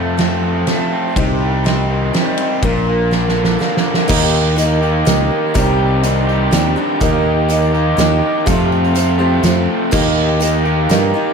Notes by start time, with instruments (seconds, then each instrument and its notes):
Already playing: steel-string acoustic guitar F2 C3 F3 A3 C4 A4, fingered electric bass F2, overdriven electric guitar F2 A3 C4
0.17 steel-string acoustic guitar F3 A3 C4 A4, overdriven electric guitar C4, snare, ride
0.43 overdriven electric guitar F3
0.67 steel-string acoustic guitar F3 A3 C4 A4, overdriven electric guitar A3, snare, ride
0.93 overdriven electric guitar C4
1.16 fingered electric bass C2, overdriven electric guitar C3, steel-string acoustic guitar C3 D#3 C4 D#4 G4, kick, ride
1.40 overdriven electric guitar G3
1.64 steel-string acoustic guitar D#3 C4 D#4 G4, overdriven electric guitar C4, snare, ride
1.90 overdriven electric guitar D#3
2.13 steel-string acoustic guitar D#3 C4 D#4 G4, overdriven electric guitar G3, snare, ride
2.38 overdriven electric guitar C4, ride
2.62 fingered electric bass A#1, steel-string acoustic guitar A#2 F3 A#3 D4 A#4, overdriven electric guitar A#2, kick, ride
2.88 overdriven electric guitar A#3
3.11 steel-string acoustic guitar F3 A#3 D4 A#4, overdriven electric guitar D4, snare
3.29 snare
3.36 overdriven electric guitar D3
3.44 snare
3.59 steel-string acoustic guitar F3 A#3 D4 A#4, overdriven electric guitar A#3, snare
3.77 snare
3.85 overdriven electric guitar D4
3.94 snare
4.08 fingered electric bass D#2, steel-string acoustic guitar D#3 A#3 D#4 G4, overdriven electric guitar D#3 A#3 D#4 G4, grand piano D#4 G4 A#4 D#5, kick, crash, tambourine
4.56 steel-string acoustic guitar D#3 A#3 D#4 G4, grand piano D#4 G4 A#4 D#5, closed hi-hat, tambourine
4.81 overdriven electric guitar D#3 A#3 D#4 G4, tambourine
5.05 fingered electric bass C#2, steel-string acoustic guitar D#3 A#3 D#4 G4, grand piano D#4 G4 A#4 D#5, snare, closed hi-hat, tambourine
5.54 fingered electric bass C2, overdriven electric guitar C3 D#3 G3 D#4 G4, steel-string acoustic guitar C3 D#3 C4 G4, grand piano D#4 G4 C5 D5, kick, closed hi-hat, tambourine
6.02 steel-string acoustic guitar D#3 C4 G4, grand piano D#4 G4 C5 D5, closed hi-hat, tambourine
6.16 tambourine
6.27 overdriven electric guitar C3 D#3 G3 D#4 G4, tambourine
6.51 fingered electric bass D#2, steel-string acoustic guitar D#3 C4 D4 G4, grand piano D#4 G4 C5 D5, snare, closed hi-hat, tambourine
6.76 steel-string acoustic guitar C4 D4 G4
7.00 fingered electric bass D#2, overdriven electric guitar D#3 A#3 D#4 G4, steel-string acoustic guitar D#3 A#3 D#4 G4, grand piano D#4 G4 A#4 D#5, kick, closed hi-hat, tambourine
7.49 steel-string acoustic guitar D#3 A#3 D#4 G4, grand piano D#4 G4 A#4 D#5, closed hi-hat, tambourine
7.62 tambourine
7.73 overdriven electric guitar D#3 A#3 D#4 G4, tambourine
7.97 fingered electric bass D#2, steel-string acoustic guitar D#3 A#3 D#4 G4, grand piano D#4 G4 A#4 D#5, snare, closed hi-hat, tambourine
8.46 steel-string acoustic guitar F2 C3 F3 A3 C4 G4, overdriven electric guitar F2 C3 F3 A3 C4 F4, fingered electric bass F2, grand piano F4 G4 A4 C5, kick, closed hi-hat, tambourine
8.60 tambourine
8.72 tambourine
8.84 tambourine
8.95 steel-string acoustic guitar F3 A3 C4 G4, grand piano F4 G4 A4 C5, closed hi-hat, tambourine
9.18 overdriven electric guitar F2 C3 F3 A3 C4 F4, steel-string acoustic guitar F3 A3 C4 G4
9.43 fingered electric bass F2, steel-string acoustic guitar F3 A3 C4 G4, grand piano F4 G4 A4 C5, snare, closed hi-hat, tambourine
9.91 fingered electric bass D#2, steel-string acoustic guitar D#3 A#3 D#4 G4, overdriven electric guitar D#3 A#3 D#4 G4, grand piano D#4 G4 A#4 D#5, kick, crash, tambourine
10.40 steel-string acoustic guitar D#3 A#3 D#4 G4, grand piano D#4 G4 A#4 D#5, closed hi-hat, tambourine
10.53 tambourine
10.64 overdriven electric guitar D#3 A#3 D#4 G4, tambourine
10.89 fingered electric bass G2, steel-string acoustic guitar D#3 A#3 D#4 G4, grand piano D#4 G4 A#4 D#5, snare, closed hi-hat, tambourine
11.14 steel-string acoustic guitar A#3 D#4 G4